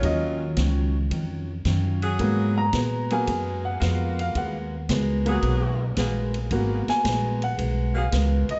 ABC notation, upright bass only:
X:1
M:4/4
L:1/8
Q:"Swing" 1/4=111
K:Abdor
V:1 name="Upright bass" clef=bass
E,,2 D,,2 F,,2 G,,2 | A,,2 B,,2 G,,2 F,,2 | E,,2 D,,2 C,,2 B,,,2 | A,,, z B,,,2 C,,2 D,, z |]